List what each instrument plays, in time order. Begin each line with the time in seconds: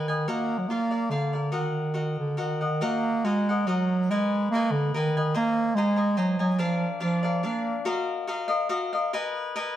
Already playing: bass clarinet D#3
0.08 cavaquinho B4 D#5 G#5
0.28 bass clarinet A#3, cavaquinho F#4 A#4 D#5 F#5
0.58 bass clarinet F#3
0.68 bass clarinet A#3, cavaquinho F4 A#4 D5 F5
0.91 cavaquinho A#4 D5 F5
1.10 bass clarinet D3, cavaquinho F4 A#4 D5 F5
1.33 cavaquinho A#4 D5 F5
1.52 bass clarinet D#3, cavaquinho F#4 A#4 D#5 F#5
1.94 cavaquinho F#4 A#4 D#5 F#5
2.19 bass clarinet D3
2.37 bass clarinet D#3, cavaquinho F#4 A#4 D#5 F#5
2.61 cavaquinho A#4 D#5 F#5
2.81 bass clarinet A#3, cavaquinho F#4 A#4 D#5 F#5
3.25 bass clarinet G#3, cavaquinho F#4 A#4 D#5 F#5
3.49 cavaquinho A#4 D#5 F#5
3.67 bass clarinet F#3, cavaquinho F#4 A#4 D#5 F#5
4.10 bass clarinet G#3, cavaquinho A#4 B4 D#5 G#5
4.51 bass clarinet A#3, cavaquinho A#4 D#5
4.55 cavaquinho B4 G#5
4.72 bass clarinet D3
4.94 bass clarinet D#3, cavaquinho A#4 B4 D#5 G#5
5.17 cavaquinho B4 D#5 G#5
5.34 bass clarinet A#3, cavaquinho C5 D#5 G#5 A#5
5.75 bass clarinet G#3, cavaquinho C5 D#5 G#5 A#5
5.96 cavaquinho D#5 G#5 A#5
6.17 bass clarinet F#3, cavaquinho C5 D#5 G#5 A#5
6.39 bass clarinet F#3, cavaquinho D#5 G#5 A#5
6.58 bass clarinet F3, cavaquinho D4 A#4 D5 F5
7.00 bass clarinet F3, cavaquinho D4 A#4 D5 F5
7.23 cavaquinho A#4 D5 F5
7.43 bass clarinet A#3, cavaquinho D4 A#4 D5 F5
7.85 cavaquinho F#4 A#4 D#5 F5
8.27 cavaquinho F#4 A#4 D#5 F5
8.48 cavaquinho A#4 D#5 F5
8.69 cavaquinho F#4 A#4 D#5 F5
8.93 cavaquinho A#4 D#5 F5
9.13 cavaquinho A#4 B4 D#5 G#5
9.56 cavaquinho A#4 B4 D#5 G#5